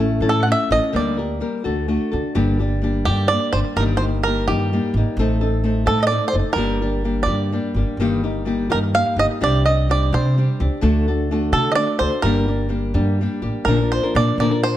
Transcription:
Already playing: A1 A3 C#4
0.00 E4 A4
0.20 A2 E3 A3 C#4 E4 A4
0.29 A4
0.43 F#5
0.47 A3 C#4 E4 A4
0.52 E5
0.70 A1 A3 C#4 E4 A4 D#5
0.93 D2 D3 G3 A#3 G4 A#4 D5
1.17 A#3 G4 A#4
1.40 G3 A#3 G4 A#4
1.64 D2 D3 A3 D4 F#4 A4
1.88 A3 D4 F#4 A4
2.12 D2 D4 F#4 A4
2.35 G1 G2 D3 G3 A#3 D4 G4
2.59 G3 A#3 D4 G4
2.82 G3 A#3 D4 G4
3.05 G2 D3 G3 A#3 D4 G4
3.28 G3 D5
3.32 A#3 D4 G4
3.53 G1 A#3 D4 G4 C5
3.57 G3
3.76 G1 G2 D#3 G3 A#3 D#4 G4 A#4
3.97 C5
4.02 G3 A#3 D#4 G4
4.23 G3 A#3 D#4 G4 A#4
4.48 G2 D#3 G3 A#3 D#4 G4
4.73 G3 A#3 D#4 G4
4.94 G#1 D#4 G4
4.98 G3 A#3
5.17 A1 A3 C4 A4
5.21 D#4
5.41 C4 D#4 A4
5.64 A3 C4 D#4 A4
5.86 A2 A3 C4 D#4 A4
6.03 D#5
6.07 A3 D5
6.11 C4 D#4 A4
6.28 C5
6.33 F#1 C4 D#4 A4
6.53 G1 G2 D3 A#4
6.57 G3 A#3 D4 G4
6.82 G3 A#3 D4 G4
7.04 G3 A#3 D4 G4
7.23 G2 D5
7.28 G2 D3 G3 A#3 D4 G4
7.52 G3 A#3 D4 G4
7.74 G1 G3 A#3 D4 G4
7.97 G1 G2 D#3 G3 A#3 D#4
8.02 G4
8.23 G3 A#3 D#4 G4
8.45 G3 A#3 D#4 G4
8.70 G2 D#3 G3 A#3 D#4 G4 A#4
8.94 G3 A#3 D#4 G4 F5
9.16 G1 G3 A#3 D#4 G4 D#5
9.41 C2 C3 G3 C4 D4 G4 D5
9.66 C4 D4 G4 D#5
9.89 G3 C4 D4 G4 D5
10.13 C3 G3 C4 D4 G4 C5
10.38 G3 C4 D4 G4
10.60 C#2 C4 D4 G4
10.81 D2 D3 A3 D4 F#4 A4
11.08 D4 F#4 A4
11.31 A3 D4 F#4 A4
11.52 D3 A3 D4 F#4 A4
11.72 D5 D#5
11.77 A3 D4 F#4 A4
11.99 D2 D4 F#4 A4 C5
12.22 G1 G2 D3 G3 A#3 D4 G4 A#4
12.48 G3 A#3 D4 G4
12.69 G3 A#3 D4 G4
12.94 G2 D3 G3 A#3 D4 G4
13.21 G3 A#3 D4 G4
13.42 A1 G3 A#3 D4 G4
13.65 A#1 A#2 D3 F3 A#3 D4 A#4
13.69 A#4
13.80 F3 A#3 D4 A#4
13.92 C5
14.03 F3 A#3 D4 A#4
14.15 A#2 F3 A#3 D4 A#4 D5
14.38 A#2 D3 F3 A#3 D4 A#4 D5
14.51 F3 A#3 D4 A#4
14.63 C5

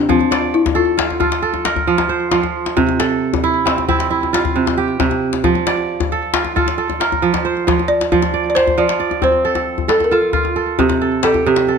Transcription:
Already playing: C3 C4 E4 F4 G4
0.09 F3 C4, djembe bass
0.21 djembe slap, djembe tone
0.31 D5, djembe slap
0.54 E4
0.66 djembe slap, djembe tone, djembe bass
0.75 F4 A4
0.97 F4, djembe slap
1.10 djembe tone
1.20 F4 A4, djembe bass
1.32 djembe slap
1.42 A4, djembe slap
1.54 djembe tone
1.65 A#4, djembe slap
1.76 djembe slap, djembe bass
1.87 F3, djembe slap
1.98 djembe slap, djembe tone
2.09 C5
2.31 F3, djembe slap
2.43 djembe tone
2.66 djembe slap
2.77 C3, djembe bass
2.89 djembe slap, djembe tone
2.99 A4, djembe slap
3.34 djembe slap, djembe tone, djembe bass
3.44 E4
3.65 C4, djembe slap
3.78 djembe tone
3.88 C4 E4, djembe bass
4.00 djembe slap
4.10 E4, djembe slap
4.23 djembe tone
4.33 F4, djembe slap
4.45 djembe slap, djembe bass
4.56 C3, djembe slap
4.67 djembe slap, djembe tone
4.77 G4
5.00 C3, djembe slap, djembe bass
5.11 djembe tone
5.33 djembe slap
5.44 F3, djembe slap, djembe bass
5.55 djembe slap, djembe tone
5.67 D5, djembe slap
5.78 djembe slap
6.00 djembe slap, djembe tone, djembe bass
6.12 A4
6.34 F4, djembe slap
6.45 djembe tone
6.56 F4 A4, djembe slap, djembe bass
6.68 djembe slap
6.78 A4
6.90 djembe tone
7.00 A#4, djembe slap
7.12 djembe slap, djembe bass
7.22 F3, djembe slap
7.34 djembe slap, djembe tone
7.45 C5, djembe slap
7.57 djembe slap
7.67 F3, djembe slap, djembe bass
7.79 djembe tone
7.88 D5
8.01 djembe slap
8.12 F3, djembe bass
8.22 djembe slap, djembe tone
8.34 D5
8.46 D5, djembe slap
8.55 C5, djembe slap
8.67 djembe tone, djembe bass
8.78 F3 D5
8.89 djembe slap
9.00 D5, djembe slap
9.11 djembe tone
9.22 C4 C5, djembe bass
9.45 A4, djembe slap
9.55 djembe slap, djembe tone
9.78 djembe bass
9.88 A4, djembe slap
10.00 djembe tone
10.04 A#4
10.11 F4 A4
10.33 F4, djembe slap, djembe bass
10.45 djembe tone
10.56 A4
10.79 C3 G4, djembe bass
10.89 djembe slap, djembe tone
11.01 A4
11.23 G4 A4, djembe slap
11.34 djembe bass
11.46 C3 G4
11.56 djembe slap
11.67 A4, djembe slap

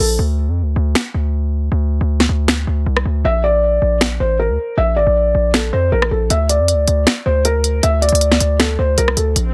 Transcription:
0.00 A#1 A4
0.19 D2
0.48 F2
0.62 D2
0.76 D2
0.95 finger snap, snare
1.14 D2
1.72 D2
2.01 D2
2.20 snare
2.29 D2
2.48 finger snap, snare
2.67 D2
2.86 C2
2.97 cross-stick
3.05 D2
3.25 A#1 E5
3.44 D5
3.82 A#1
4.01 finger snap, snare
4.20 A1 C5
4.39 A#4
4.49 D2
4.77 A#1 E5
4.96 A1 D5
5.07 A#1
5.35 A#1
5.54 A4, finger snap, snare
5.73 F2 C5
5.92 A#1 A#4
6.02 cross-stick
6.11 A#1 A4
6.30 D2 E5, closed hi-hat
6.49 D5, closed hi-hat
6.60 F2
6.68 closed hi-hat
6.74 D2
6.88 D2, closed hi-hat
7.07 finger snap, snare, closed hi-hat
7.26 D2 C5
7.45 A#4, closed hi-hat
7.64 closed hi-hat
7.83 D2 E5, closed hi-hat
8.02 D5, closed hi-hat
8.09 D2, closed hi-hat
8.15 closed hi-hat
8.21 closed hi-hat
8.32 snare
8.40 D2, closed hi-hat
8.59 A4, finger snap, snare, closed hi-hat
8.79 D2 C5
8.98 C2 A#4, closed hi-hat
9.08 cross-stick
9.17 D2 A4, closed hi-hat
9.36 A#1, closed hi-hat, swell

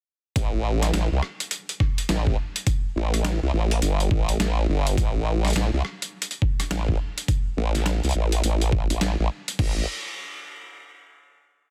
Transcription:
0.36 A1, kick, closed hi-hat
0.83 cross-stick, snare, closed hi-hat
0.94 A1, snare, closed hi-hat
1.12 C2
1.23 cross-stick
1.40 closed hi-hat
1.51 closed hi-hat
1.69 closed hi-hat
1.80 kick, cross-stick
1.98 closed hi-hat
2.09 A1, snare, closed hi-hat
2.27 kick
2.56 closed hi-hat
2.67 kick, closed hi-hat
2.96 A1
3.14 cross-stick, closed hi-hat
3.25 snare, closed hi-hat
3.43 C2
3.54 A1
3.71 closed hi-hat
3.82 G1, closed hi-hat
4.00 closed hi-hat
4.11 A1, kick
4.29 closed hi-hat
4.40 A1, snare, closed hi-hat
4.69 G1
4.87 closed hi-hat
4.97 A1, kick, closed hi-hat
5.45 cross-stick, snare, closed hi-hat
5.48 closed hi-hat
5.50 closed hi-hat
5.53 A1, snare, closed hi-hat
5.56 closed hi-hat
5.73 C2
5.85 cross-stick
6.02 closed hi-hat
6.22 closed hi-hat
6.31 closed hi-hat
6.42 kick
6.60 cross-stick, closed hi-hat
6.71 A1, snare, closed hi-hat
6.89 kick
7.18 closed hi-hat
7.28 kick, closed hi-hat
7.57 A1
7.75 snare, closed hi-hat
7.86 snare, closed hi-hat
8.04 C2, closed hi-hat
8.05 closed hi-hat
8.09 closed hi-hat
8.11 closed hi-hat
8.13 A1, closed hi-hat
8.32 closed hi-hat
8.44 A1, closed hi-hat
8.61 closed hi-hat
8.72 kick
8.90 A1, closed hi-hat
9.01 A1, snare, closed hi-hat
9.20 A1
9.48 closed hi-hat
9.59 A1, kick, crash

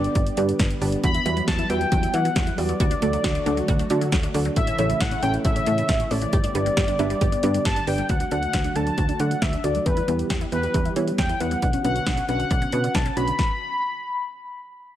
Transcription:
Already playing: D3 G3 B3 G4 D5
0.04 closed hi-hat
0.15 G1, kick, closed hi-hat
0.27 closed hi-hat
0.37 G2 D4 G4 B4 D5, closed hi-hat
0.49 closed hi-hat
0.59 G1, kick, snare, closed hi-hat
0.70 closed hi-hat
0.81 G1 D4 G4 B4 D5, open hi-hat
0.92 closed hi-hat
1.03 E2 E3 F#3 F#4 B5, kick, closed hi-hat
1.14 E4, closed hi-hat
1.25 E2 G3 F#4 G4 B4 E5, closed hi-hat
1.37 F#3, closed hi-hat
1.48 E2 F#4 A5, kick, snare, closed hi-hat
1.59 E4, closed hi-hat
1.70 E2 G3 F#4 G4 B4 E5 G5, closed hi-hat
1.81 F#3, closed hi-hat
1.92 E2 F#4, kick, closed hi-hat
2.03 E4, closed hi-hat
2.14 E3 G3 F#4 G4 B4 E5 F#5, closed hi-hat
2.25 F#3, closed hi-hat
2.36 E2 F#4, kick, snare, closed hi-hat
2.47 E4, closed hi-hat
2.58 E2 G3 F#4 G4 B4 D5, open hi-hat
2.69 F#3, closed hi-hat
2.80 D2 D3 F#3 A3 F#4, kick, closed hi-hat
2.91 D4, closed hi-hat
3.02 D2 A3 D4 F#4 A4 D5, closed hi-hat
3.13 F#3, closed hi-hat
3.24 D2 F#4, kick, snare, closed hi-hat
3.35 D4, closed hi-hat
3.46 D2 A3 D4 F#4 A4 D5, closed hi-hat
3.57 F#3, closed hi-hat
3.68 D2 F#4, kick, closed hi-hat
3.79 D4, closed hi-hat
3.90 D3 A3 D4 F#4 A4 D5, closed hi-hat
4.01 F#3, closed hi-hat
4.12 D2 F#4, kick, snare, closed hi-hat
4.23 D4, closed hi-hat
4.34 D2 A3 D4 F#4 A4 D5, open hi-hat
4.45 F#3, closed hi-hat
4.56 A1 C#3 E3 A3 E4 E5, kick, closed hi-hat
4.67 C#4, closed hi-hat
4.78 A1 A3 C#4 E4 A4 C#5, closed hi-hat
4.90 E3, closed hi-hat
5.00 A1 E4 F#5, kick, snare, closed hi-hat
5.11 C#4, closed hi-hat
5.22 A1 A3 C#4 E4 A4 C#5 G5, closed hi-hat
5.34 E3, closed hi-hat
5.45 A1 E4 E5, kick, closed hi-hat
5.56 C#4, closed hi-hat
5.66 A2 A3 C#4 E4 A4 C#5, closed hi-hat
5.78 E3, closed hi-hat
5.89 A1 E4, kick, snare, closed hi-hat
6.00 C#4, closed hi-hat
6.11 A1 A3 C#4 E4 A4 C#5 D5, open hi-hat
6.22 E3, closed hi-hat
6.33 G1 D3 G3 B3 G4, kick, closed hi-hat
6.44 D4, closed hi-hat
6.55 G1 B3 D4 G4 B4 D5, closed hi-hat
6.66 G3, closed hi-hat
6.77 G1 G4, kick, snare, closed hi-hat
6.88 D4, closed hi-hat
6.99 G1 B3 D4 G4 B4 E5, closed hi-hat
7.10 G3, closed hi-hat
7.21 G1 G4, kick, closed hi-hat
7.32 D4, closed hi-hat
7.43 G2 B3 D4 G4 B4 D5, closed hi-hat
7.54 G3, closed hi-hat
7.65 G1 G4 A5, kick, snare, closed hi-hat
7.76 D4, closed hi-hat
7.87 G1 B3 D4 G4 B4 D5 G5, open hi-hat
7.98 G3, closed hi-hat
8.09 D2 D3 F#3 A3 F#4 F#5, kick, closed hi-hat
8.20 D4, closed hi-hat
8.31 D2 A3 D4 F#4 A4 D5 F#5, closed hi-hat
8.43 closed hi-hat
8.53 D2 F#4, kick, snare, closed hi-hat
8.64 D4, closed hi-hat
8.76 D2 A3 D4 F#4 A4 D5 A5, closed hi-hat
8.87 F#3, closed hi-hat
8.98 D2 F#4, kick, closed hi-hat
9.09 D4, closed hi-hat
9.20 D3 A3 D4 F#4 A4 D5 F#5, closed hi-hat
9.31 F#3, closed hi-hat
9.42 D2 F#4 E5, kick, snare, closed hi-hat
9.53 D4, closed hi-hat
9.64 D2 A3 D4 F#4 A4 D5, closed hi-hat
9.75 F#3, closed hi-hat
9.86 E2 E3 G3 B3 G4 B4, kick, closed hi-hat
9.97 E4, closed hi-hat
10.08 E2 B3 E4 G4 B4, closed hi-hat
10.19 closed hi-hat
10.30 E2 G4, kick, snare, closed hi-hat
10.41 E4, closed hi-hat
10.52 E2 B3 E4 G4 B4, closed hi-hat
10.63 G3, closed hi-hat
10.74 E2 G4, kick, closed hi-hat
10.85 E4, closed hi-hat
10.96 E3 B3 E4 G4 C#5, closed hi-hat
11.07 G3, closed hi-hat
11.18 E2 G4 G5, kick, snare, closed hi-hat
11.29 E4, closed hi-hat
11.40 E2 B3 E4 G4 B4 F#5, closed hi-hat
11.51 G3, closed hi-hat
11.62 B1 D3 C#4 D4 F#4, kick, closed hi-hat
11.73 C#4, closed hi-hat
11.84 B1 B3 C#4 D4 F#4 B4 F#5, closed hi-hat
11.96 closed hi-hat
12.06 B1 D4, kick, snare, closed hi-hat
12.17 C#4, closed hi-hat
12.29 B1 B3 C#4 D4 F#4 B4 F#5, closed hi-hat
12.40 D3, closed hi-hat
12.51 B1 D4, kick, closed hi-hat
12.62 C#4, closed hi-hat
12.72 B2 B3 C#4 D4 F#4 B4, closed hi-hat
12.84 D3, closed hi-hat
12.95 B1 D4 A5, kick, snare, closed hi-hat
13.06 C#4, closed hi-hat
13.17 B1 B3 C#4 D4 F#4 B4 B5, closed hi-hat
13.28 D3, closed hi-hat
13.39 kick, snare

